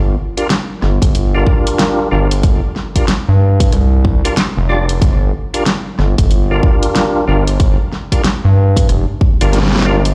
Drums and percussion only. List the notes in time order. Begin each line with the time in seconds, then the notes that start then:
0.38 closed hi-hat
0.50 snare, closed hi-hat
0.82 cross-stick, snare
1.02 kick, closed hi-hat
1.15 closed hi-hat
1.47 kick
1.67 closed hi-hat
1.79 snare, closed hi-hat
2.31 closed hi-hat
2.43 kick, closed hi-hat
2.76 snare
2.96 kick, closed hi-hat
3.08 snare, closed hi-hat
3.60 kick, closed hi-hat
3.72 cross-stick, closed hi-hat
4.05 kick
4.25 cross-stick, closed hi-hat
4.37 snare, closed hi-hat
4.89 closed hi-hat
5.02 kick, closed hi-hat
5.54 closed hi-hat
5.66 snare, closed hi-hat
5.99 cross-stick, snare
6.18 kick, closed hi-hat
6.31 closed hi-hat
6.63 kick
6.83 closed hi-hat
6.96 snare, closed hi-hat
7.47 closed hi-hat
7.60 kick, closed hi-hat
7.92 snare
8.12 kick, closed hi-hat
8.24 snare, closed hi-hat
8.76 kick, closed hi-hat
8.89 cross-stick, closed hi-hat
9.21 kick
9.41 cross-stick, closed hi-hat
9.53 snare, closed hi-hat
9.58 snare
9.63 snare
9.68 snare
9.73 snare
9.76 snare
9.79 snare
9.82 snare
10.05 closed hi-hat